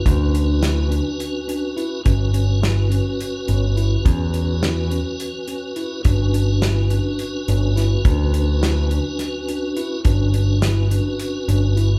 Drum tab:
HH |xxxxxxx|xxxxxxx|xxxxxxx|xxxxxxx|
SD |--o----|--o----|--o----|--o---o|
BD |o------|o------|o------|o------|

HH |xxxxxxx|xxxxxxx|
SD |--o-o--|--o----|
BD |o------|o------|